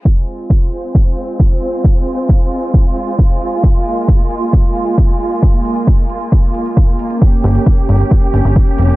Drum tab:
HH |xxxxxxxxxxxxxxxx|xxxxxxxxxxxxxxxx|xxxxxxxxxxxxxxxx|xxxxxxxxxxxxxxxx|
BD |o---o---o---o---|o---o---o---o---|o---o---o---o---|o---o---o---o---|

HH |xxxxxxxxxxxxxxxx|
BD |o---o---o---o---|